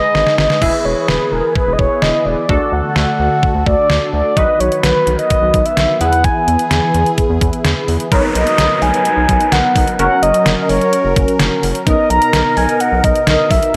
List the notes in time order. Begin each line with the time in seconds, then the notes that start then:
Already playing: G#3 D#4 G#4 B4 D#5
0.15 G#1, snare
0.27 snare
0.38 G#1 D#5, snare
0.50 snare
0.62 E1 E3 B3 E4 G#4 B4 E5, kick, crash
0.85 E1 C#5
1.08 E1 B4, snare
1.32 E1 A#4
1.55 B4, kick
1.67 E1
1.73 D#5
1.79 E1 C#5, kick
2.02 E1 D#5, snare
2.26 E1 D5
2.49 D2 D3 A3 D4 F#4 A4, kick
2.73 D2 F#5
2.96 D2, snare
3.19 D2
3.43 kick
3.55 D2
3.66 D2 D5, kick
3.90 D2, snare
4.13 D2 D5
4.37 B1 D#3 F#3 B3 F#4 B4 D#5, kick, closed hi-hat
4.60 B1 C#5, closed hi-hat
4.72 closed hi-hat
4.83 B1 B4, snare, closed hi-hat
5.07 B1, closed hi-hat
5.19 D#5, closed hi-hat
5.30 kick, closed hi-hat
5.42 B1
5.54 B1, kick, closed hi-hat
5.66 E5, closed hi-hat
5.77 B1, snare, closed hi-hat
6.01 E2 E3 E4 G#4 B4 F#5, closed hi-hat
6.13 closed hi-hat
6.24 G#5, kick, closed hi-hat
6.48 E2, closed hi-hat
6.59 closed hi-hat
6.71 E2, snare, closed hi-hat
6.94 E2, closed hi-hat
7.06 closed hi-hat
7.18 kick, closed hi-hat
7.30 E2
7.41 E2, kick, closed hi-hat
7.53 closed hi-hat
7.65 E2, snare, closed hi-hat
7.88 E2, open hi-hat
8.00 closed hi-hat
8.12 B1 F#3 B3 D#4 A#4 B4 C#5, kick, closed hi-hat, downlifter
8.35 B1 D#5, closed hi-hat
8.47 closed hi-hat
8.58 B1, snare, closed hi-hat
8.82 B1 G#5, open hi-hat
8.94 closed hi-hat
9.05 closed hi-hat
9.17 B1
9.29 B1, kick, closed hi-hat
9.40 closed hi-hat
9.52 B1 F#5, snare, closed hi-hat
9.76 B1, kick, open hi-hat
9.88 closed hi-hat
9.99 F#1 F#3 C#4 F#4 A#4 F#5, closed hi-hat
10.22 F#1 D#5, closed hi-hat
10.34 closed hi-hat
10.46 F#1, snare, closed hi-hat
10.62 D#5
10.69 F#1 C#5, open hi-hat
10.81 closed hi-hat
10.93 closed hi-hat
11.05 F#1
11.16 F#1, kick, closed hi-hat
11.28 closed hi-hat
11.39 F#1, snare, closed hi-hat
11.63 F#1, open hi-hat
11.75 closed hi-hat
11.87 B1 B2 B3 D#4 A#4 D#5, kick, closed hi-hat
12.10 B1 A#5, closed hi-hat
12.22 closed hi-hat
12.33 B1, snare, closed hi-hat
12.57 B1 G#5, open hi-hat
12.69 closed hi-hat
12.80 F#5, closed hi-hat
12.92 B1
13.04 B1 D#5, kick, closed hi-hat
13.15 closed hi-hat
13.27 B1 D#5, snare, closed hi-hat
13.51 B1 E5, kick, open hi-hat
13.63 closed hi-hat